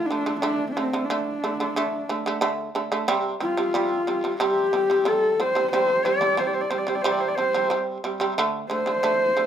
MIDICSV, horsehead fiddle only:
0, 0, Header, 1, 2, 480
1, 0, Start_track
1, 0, Tempo, 661521
1, 320, Time_signature, 4, 2, 24, 8
1, 6868, End_track
2, 0, Start_track
2, 0, Title_t, "Horsehead fiddle"
2, 0, Program_c, 0, 110
2, 42, Note_on_c, 0, 62, 78
2, 287, Note_off_c, 0, 62, 0
2, 291, Note_on_c, 0, 62, 82
2, 513, Note_off_c, 0, 62, 0
2, 517, Note_on_c, 0, 60, 71
2, 757, Note_on_c, 0, 62, 66
2, 767, Note_off_c, 0, 60, 0
2, 1739, Note_off_c, 0, 62, 0
2, 2485, Note_on_c, 0, 65, 71
2, 3174, Note_off_c, 0, 65, 0
2, 3201, Note_on_c, 0, 67, 90
2, 3682, Note_on_c, 0, 69, 85
2, 3693, Note_off_c, 0, 67, 0
2, 3922, Note_on_c, 0, 72, 89
2, 3933, Note_off_c, 0, 69, 0
2, 4147, Note_off_c, 0, 72, 0
2, 4151, Note_on_c, 0, 72, 89
2, 4386, Note_on_c, 0, 74, 84
2, 4397, Note_off_c, 0, 72, 0
2, 4638, Note_on_c, 0, 72, 64
2, 4649, Note_off_c, 0, 74, 0
2, 4693, Note_on_c, 0, 74, 56
2, 4704, Note_off_c, 0, 72, 0
2, 4746, Note_on_c, 0, 72, 61
2, 4756, Note_off_c, 0, 74, 0
2, 4795, Note_on_c, 0, 74, 59
2, 4806, Note_off_c, 0, 72, 0
2, 4861, Note_on_c, 0, 72, 58
2, 4872, Note_off_c, 0, 74, 0
2, 4917, Note_on_c, 0, 74, 63
2, 4928, Note_off_c, 0, 72, 0
2, 4991, Note_on_c, 0, 72, 61
2, 5002, Note_off_c, 0, 74, 0
2, 5041, Note_on_c, 0, 74, 67
2, 5052, Note_off_c, 0, 72, 0
2, 5093, Note_on_c, 0, 72, 64
2, 5104, Note_off_c, 0, 74, 0
2, 5162, Note_on_c, 0, 74, 65
2, 5173, Note_off_c, 0, 72, 0
2, 5224, Note_on_c, 0, 72, 64
2, 5235, Note_off_c, 0, 74, 0
2, 5283, Note_on_c, 0, 74, 66
2, 5294, Note_off_c, 0, 72, 0
2, 5333, Note_on_c, 0, 72, 86
2, 5344, Note_off_c, 0, 74, 0
2, 5591, Note_off_c, 0, 72, 0
2, 6316, Note_on_c, 0, 72, 88
2, 6868, Note_off_c, 0, 72, 0
2, 6868, End_track
0, 0, End_of_file